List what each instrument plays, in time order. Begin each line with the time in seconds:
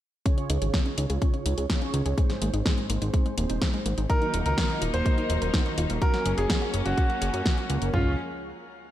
0.26 analog polysynth C#3 C#4 F4 G#4 C#5, synth arpeggio sound C#4, kick, closed hi-hat
0.38 synth arpeggio sound C#4, closed hi-hat
0.50 analog synth bass C#2, synth arpeggio sound D#4, closed hi-hat
0.62 analog synth bass G#1, synth arpeggio sound G#4, closed hi-hat
0.74 synth arpeggio sound C#4, kick, snare, closed hi-hat
0.86 synth arpeggio sound C#4, closed hi-hat
0.98 analog synth bass C#2, synth arpeggio sound D#4, closed hi-hat
1.10 analog synth bass C#2, synth arpeggio sound G#4, closed hi-hat
1.22 synth arpeggio sound C#4, kick, closed hi-hat
1.34 synth arpeggio sound C#4, closed hi-hat
1.46 analog synth bass C#2, synth arpeggio sound D#4, closed hi-hat
1.58 analog synth bass C#2, synth arpeggio sound G#4, closed hi-hat
1.70 analog polysynth C#3 C#4 F4 G#4 C#5, synth arpeggio sound C#4, kick, snare, closed hi-hat
1.82 synth arpeggio sound C#4, closed hi-hat
1.94 analog synth bass C#2, synth arpeggio sound D#4, closed hi-hat
2.06 analog synth bass C#2, synth arpeggio sound G#4, closed hi-hat
2.18 analog polysynth G#2 C4 D#4 G#4 C5, synth arpeggio sound G#3, kick, closed hi-hat
2.30 synth arpeggio sound G#3, snare, closed hi-hat
2.42 analog synth bass G#1, synth arpeggio sound A#3, closed hi-hat
2.54 analog synth bass G#1, synth arpeggio sound D#4, closed hi-hat
2.66 synth arpeggio sound G#3, kick, snare, closed hi-hat
2.78 synth arpeggio sound G#3, closed hi-hat
2.90 analog synth bass G#1, synth arpeggio sound A#3, closed hi-hat
3.02 analog synth bass G#1, synth arpeggio sound D#4, closed hi-hat
3.14 synth arpeggio sound G#3, kick, closed hi-hat
3.26 synth arpeggio sound G#3, closed hi-hat
3.38 analog synth bass D#1, analog polysynth G#2 C4 D#4 G#4 C5, synth arpeggio sound A#3, closed hi-hat
3.50 analog synth bass D#1, synth arpeggio sound D#4, closed hi-hat
3.62 synth arpeggio sound G#3, kick, snare, closed hi-hat
3.74 synth arpeggio sound G#3, closed hi-hat
3.86 analog synth bass G#1, synth arpeggio sound A#3, closed hi-hat
3.98 analog synth bass G#1, synth arpeggio sound D#4, closed hi-hat
4.10 analog polysynth D#3 A#3 D#4 F#4 A#4, string section F#3 A#3 D#4, synth arpeggio sound D#4, grand piano A#4, kick, closed hi-hat
4.22 synth arpeggio sound D#4, closed hi-hat
4.34 analog synth bass D#1, synth arpeggio sound F4, closed hi-hat
4.46 analog synth bass C#2, grand piano A#4, synth arpeggio sound A#4, closed hi-hat
4.58 synth arpeggio sound D#4, kick, snare, closed hi-hat
4.70 synth arpeggio sound D#4, closed hi-hat
4.82 analog synth bass D#1, synth arpeggio sound F4, closed hi-hat
4.94 analog synth bass D#1, synth arpeggio sound A#4, grand piano C5, closed hi-hat
5.06 synth arpeggio sound D#4, kick, closed hi-hat
5.18 synth arpeggio sound D#4, closed hi-hat
5.30 analog synth bass D#1, synth arpeggio sound F4, closed hi-hat
5.42 analog synth bass D#1, synth arpeggio sound A#4, closed hi-hat
5.54 analog polysynth D#3 A#3 D#4 F#4 A#4, synth arpeggio sound D#4, kick, snare, closed hi-hat
5.66 synth arpeggio sound D#4, closed hi-hat
5.78 analog synth bass D#1, synth arpeggio sound F4, closed hi-hat
5.90 analog synth bass D#1, synth arpeggio sound A#4, closed hi-hat
6.02 analog polysynth A#3 C#4 F#4 A#4, string section A#3 C#4, synth arpeggio sound F#4, grand piano A#4, kick, closed hi-hat
6.14 synth arpeggio sound F#4, snare, closed hi-hat
6.26 analog synth bass F#1, synth arpeggio sound G#4, closed hi-hat
6.38 analog synth bass F#1, grand piano G#4, synth arpeggio sound C#5, closed hi-hat
6.50 synth arpeggio sound F#4, kick, snare, closed hi-hat
6.62 synth arpeggio sound F#4, closed hi-hat
6.74 analog synth bass F#1, synth arpeggio sound G#4, closed hi-hat
6.86 analog synth bass F#1, grand piano F#4, synth arpeggio sound C#5, closed hi-hat
6.98 synth arpeggio sound F#4, kick, closed hi-hat
7.10 synth arpeggio sound F#4, closed hi-hat
7.22 analog synth bass F#1, synth arpeggio sound G#4, closed hi-hat
7.34 analog synth bass F#2, synth arpeggio sound C#5, closed hi-hat
7.46 synth arpeggio sound F#4, kick, snare, closed hi-hat
7.58 synth arpeggio sound F#4, closed hi-hat
7.70 analog synth bass C#2, analog polysynth A#3 C#4 F#4 A#4, synth arpeggio sound G#4, closed hi-hat
7.82 analog synth bass F#1, synth arpeggio sound C#5, closed hi-hat
7.94 analog synth bass C#2, string section F3 G#3 C#4, analog polysynth C#4, synth arpeggio sound C#4, grand piano F4, kick, floor tom